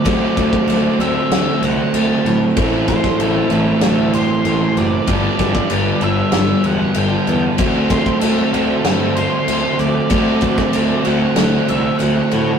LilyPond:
<<
  \new Staff \with { instrumentName = "Lead electric guitar" } { \time 4/4 \key d \mixolydian \tempo 4 = 95 d''4. e''4 fis''8 a''8. r16 | r8 c''8 a'4 a'8 c''4 d''8~ | d''4. e''4 fis''8 g''8. r16 | r8 c''8 a'4 a'8 c''4 d''8~ |
d''4. fis''4 e''8 fis''8 fis'8 | }
  \new Staff \with { instrumentName = "Twelve-string acoustic guitar" } { \time 4/4 \key d \mixolydian <fis a c' fis'>8 a8 fis8 c'8 a8 fis'8 c'8 fis8 | e8 a8 e8 c'8 a8 g'8 c'8 e8 | b8 d'8 b8 d'8 b4 d'8 b8 | a8 c'8 a8 c'8 a8 fis'8 c'8 a8 |
a8 c'8 a8 c'8 a8 fis'8 c'8 a8 | }
  \new Staff \with { instrumentName = "Overdriven electric guitar" } { \time 4/4 \key d \mixolydian <d a c' fis'>1 | <a, e a c' e'>1 | <g, d g b d'>1 | <d a c' fis'>1 |
<d a c' fis'>1 | }
  \new Staff \with { instrumentName = "Overdriven electric guitar" } { \time 4/4 \key d \mixolydian <d a c' fis'>4. <d a c' fis'>2~ <d a c' fis'>8 | <a, e a c' e'>4. <a, e a c' e'>2~ <a, e a c' e'>8 | <g, d g b d'>4. <g, d g b d'>2~ <g, d g b d'>8 | <d a c' fis'>4. <d a c' fis'>2~ <d a c' fis'>8 |
<d a c' fis'>4. <d a c' fis'>2~ <d a c' fis'>8 | }
  \new Staff \with { instrumentName = "Picked electric bass" } { \clef bass \time 4/4 \key d \mixolydian d,8 d,8 d,8 d,8 d,8 c,8 d,8 a,8 | a,,4 a,,8 a,,8 d,4 a,,8 fis,,8 | g,,8 g,,8 g,,8 g,,8 g,,8 e,,8 g,,8 e,8 | d,4 d,8 d,8 g,4 d,8 d,8 |
d,8 d,8 d,8 d,8 d,8 c,8 d,8 a,8 | }
  \new DrumStaff \with { instrumentName = "Drums" } \drummode { \time 4/4 <cymc bd>8 <cymc bd>16 bd16 cymc8 cymc8 <cymc sn>8 cymc8 cymc8 cymc8 | <cymc bd>8 <cymc bd>16 <bd sn>16 cymc8 cymc8 <cymc sn>8 cymc8 cymc8 cymc8 | <cymc bd>8 <cymc bd>16 bd16 cymc8 cymc8 <cymc sn>8 cymc8 cymc8 cymc8 | <cymc bd>8 <cymc bd>16 bd16 cymc8 cymc8 <cymc sn>8 cymc8 cymc8 cymc8 |
<cymc bd>8 <cymc bd>16 <bd sn>16 cymc8 cymc8 <cymc sn>8 cymc8 cymc8 cymc8 | }
>>